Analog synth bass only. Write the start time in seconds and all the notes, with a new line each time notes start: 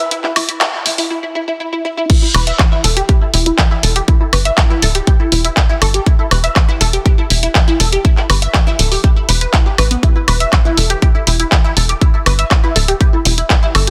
0.36 C2
0.86 G1
2.34 E1
2.84 E1
3.34 E1
3.83 E1
4.33 G1
4.82 D1
5.32 E1
5.82 G1
6.31 E1
6.81 E1
7.30 E1
7.80 E1
8.30 G1
8.79 D1
9.29 E1
9.78 A1
10.28 E1
10.78 E1
11.27 E1
11.77 E1
12.26 G1
12.76 D1
13.25 E1
13.75 G1